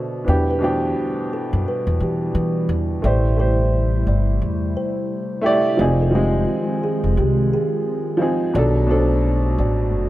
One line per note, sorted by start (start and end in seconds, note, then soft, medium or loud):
0.00 2.99 B2 medium
0.00 2.99 D3 medium
0.00 0.24 A3 medium
0.00 0.24 F#4 medium
0.24 0.92 E2 medium
0.24 0.50 E3 medium
0.24 3.00 G3 medium
0.24 0.51 B3 medium
0.24 0.52 D4 medium
0.24 3.00 E4 medium
0.29 0.52 G4 medium
0.51 0.61 B4 medium
0.59 1.50 B2 medium
0.59 1.49 E3 medium
0.59 1.50 D4 medium
0.64 1.51 G4 medium
0.64 0.94 C5 medium
1.33 1.51 A4 medium
1.53 1.65 F#2 medium
1.68 1.98 B4 medium
1.87 1.99 E2 medium
2.00 2.32 E3 medium
2.00 3.01 G4 medium
2.35 2.67 E3 loud
2.69 3.01 E2 medium
3.02 4.03 A1 loud
3.02 5.76 C3 medium
3.02 5.76 G3 medium
3.02 3.27 A3 medium
3.02 5.76 A3 medium
3.02 5.76 E4 medium
3.02 3.27 E4 medium
3.02 3.28 G4 medium
3.02 3.39 D5 medium
3.07 3.29 C5 medium
3.36 4.25 A3 medium
3.36 4.26 E4 medium
3.36 4.27 G4 medium
3.36 4.03 C5 medium
3.41 4.28 C5 medium
4.07 4.39 G1 medium
4.07 4.76 D5 medium
4.42 4.74 E2 medium
4.77 5.28 C5 medium
5.41 5.67 A3 medium
5.41 5.68 E4 medium
5.41 5.69 G4 medium
5.46 5.69 D5 loud
5.77 6.44 F1 medium
5.77 8.52 D#3 medium
5.77 6.02 F3 medium
5.77 8.52 G#3 medium
5.77 6.03 C4 medium
5.77 8.52 C4 medium
5.77 6.03 D#4 medium
5.77 8.52 F4 medium
5.81 6.04 G#4 medium
6.02 6.13 A4 medium
6.11 7.00 F3 medium
6.11 7.01 C4 medium
6.11 7.02 D#4 medium
6.15 7.03 G#3 medium
6.15 6.45 G4 medium
6.83 7.02 G#4 medium
7.04 7.16 F1 medium
7.17 7.49 C2 medium
7.17 7.49 G4 medium
7.54 8.52 G#4 medium
8.17 8.43 F3 medium
8.17 8.44 C4 medium
8.17 8.44 D#4 medium
8.22 8.45 G#4 medium
8.54 9.54 B1 loud
8.54 8.78 B2 medium
8.54 10.09 B2 medium
8.54 10.09 D3 medium
8.54 8.79 F#3 medium
8.54 10.09 A3 medium
8.54 8.80 D4 medium
8.54 10.09 F#4 medium
8.54 8.86 D5 loud
8.58 8.81 A4 medium
8.87 9.76 B2 medium
8.87 9.77 F#3 medium
8.87 9.78 D4 medium
8.91 9.79 A4 medium
8.91 9.55 C5 medium
9.58 9.93 A1 medium
9.58 10.09 D5 medium
9.93 10.09 F#1 medium